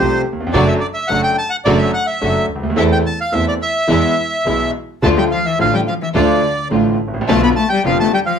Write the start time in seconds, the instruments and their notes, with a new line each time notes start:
Already playing: grand piano C2 F3, string section A3 F4, bandoneon C5
0.00 double bass C2, grand piano C3 A3 C4 G4, string section G4
0.33 grand piano D#2
0.40 grand piano E2
0.47 grand piano F2
0.53 double bass F#1, grand piano F#2 F#3 A3 D4 A4, string section A3 D4 F#4, bandoneon D5
0.68 bandoneon E5
0.80 bandoneon D5
0.94 bandoneon E5
1.08 double bass F#1, grand piano F#2 F#3 A3 D4 A4, string section A3 D4 F#4, bandoneon F#5
1.24 bandoneon G5
1.38 bandoneon A5
1.50 bandoneon F#5
1.65 double bass F#1, grand piano F#2 F#3 A3 D4 A4, string section A3 D4 F#4, bandoneon D5
1.77 bandoneon E5
1.93 bandoneon F#5
2.07 bandoneon E5
2.21 double bass F#1, grand piano F#2 F#3 A3 D4 A4, string section A3 D4 F#4
2.49 double bass D2
2.56 grand piano C#2
2.63 grand piano D2
2.70 grand piano D#2
2.76 grand piano E2 E3 A3 C4 A4, double bass E2, string section A3 C4 E4, bandoneon E5
2.92 bandoneon G5
3.06 bandoneon A5
3.21 bandoneon F5
3.32 grand piano E2 E3 A3 C4 A4, double bass E2, string section A3 C4 E4, bandoneon E5
3.48 bandoneon D5
3.62 bandoneon E5
3.88 grand piano E2 E3 G#3 B3 G#4, double bass E2, string section G#3 B3 E4
4.45 double bass B1, grand piano B1 B2 E3 G#3 B3 G#4, string section G#3 B3 E4
5.02 double bass D2, grand piano D2 D3 F3 A3 F4, string section A3 D4 F4, cello A3, bandoneon A5
5.17 cello G3, bandoneon G5
5.31 cello F3, bandoneon F5
5.46 cello E3, bandoneon E5
5.58 grand piano A1 A2 D3 F3 A3 F4, double bass A1, cello F3, string section A3 D4 F4, bandoneon F5
5.73 cello G3, bandoneon G5
5.88 cello F3, bandoneon F5
6.02 cello E3, bandoneon E5
6.15 double bass D2, grand piano D2 D3 F3 A3 F4, cello D3, string section A3 D4 F4, bandoneon D5
6.71 grand piano A1 A2 D3 F3 A3 F4, double bass A1, string section A3 D4 F4
7.00 double bass A1
7.08 grand piano G#1
7.14 grand piano A1
7.21 grand piano A#1
7.27 double bass B1, grand piano B1 B2 D3 F3 B3 F4, cello A3, string section B3 D4 F4, bandoneon A5
7.43 cello B3, bandoneon B5
7.56 cello A3, bandoneon A5
7.69 cello G3, bandoneon G5
7.84 double bass F1, grand piano F1 F2 D3 F3 B3 F4, cello F3, string section B3 D4 F4, bandoneon F5
8.00 cello A3, bandoneon A5
8.13 cello G3, bandoneon G5
8.26 cello F3, bandoneon F5